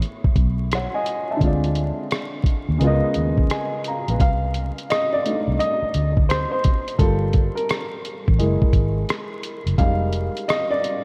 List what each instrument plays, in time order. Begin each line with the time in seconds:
Already playing: upright piano A2 A3 B3 G#4 C#5
0.02 closed hi-hat
0.24 muted fingered electric bass stroke, kick
0.36 fingered electric bass B1, kick, closed hi-hat
0.72 upright piano C#5 F#5, cross-stick, closed hi-hat
0.94 upright piano D#5 G#5
1.06 closed hi-hat
1.31 upright piano E5 A5
1.37 fingered electric bass D2, upright piano D3 G#3, kick
1.41 upright piano C4 F4, closed hi-hat
1.46 upright piano D5
1.64 closed hi-hat
1.75 closed hi-hat
2.11 cross-stick, closed hi-hat
2.44 kick, closed hi-hat
2.69 fingered electric bass D#2
2.78 fingered electric bass C#2, upright piano C#3 G#3 B3, closed hi-hat
2.83 upright piano F4 A#4 D#5
3.14 fingered electric bass D#2, closed hi-hat
3.38 kick
3.50 upright piano D#5 G#5, cross-stick, closed hi-hat
3.84 upright piano A#5, closed hi-hat
3.89 upright piano F5
4.08 fingered electric bass A#1, upright piano B4 F5, closed hi-hat
4.20 fingered electric bass C2, upright piano F5, kick, closed hi-hat
4.54 closed hi-hat
4.78 closed hi-hat
4.90 upright piano D#5, cross-stick, closed hi-hat
5.12 upright piano D5
5.25 upright piano A3 D4 D#4, closed hi-hat
5.48 fingered electric bass C2
5.59 upright piano D#5, closed hi-hat
5.82 muted fingered electric bass stroke
5.94 fingered electric bass D2, closed hi-hat
6.17 kick
6.29 upright piano C5, cross-stick, closed hi-hat
6.51 upright piano C5
6.64 kick, closed hi-hat
6.88 closed hi-hat
6.98 fingered electric bass G1, upright piano G3 A#3 F4 A4, kick, closed hi-hat
7.33 kick, closed hi-hat
7.55 upright piano A#4, closed hi-hat
7.69 cross-stick, closed hi-hat
8.05 closed hi-hat
8.28 fingered electric bass A1, kick
8.39 fingered electric bass F#1, upright piano G#3 A#3 E4, closed hi-hat
8.62 kick
8.73 fingered electric bass G#1, kick, closed hi-hat
9.09 cross-stick, closed hi-hat
9.43 closed hi-hat
9.66 fingered electric bass F#1, closed hi-hat
9.78 fingered electric bass F1, upright piano G3 G#3 A#3 D#4 F5, kick, closed hi-hat
10.13 closed hi-hat
10.37 closed hi-hat
10.48 upright piano D#5, cross-stick, closed hi-hat
10.71 upright piano D5
10.84 closed hi-hat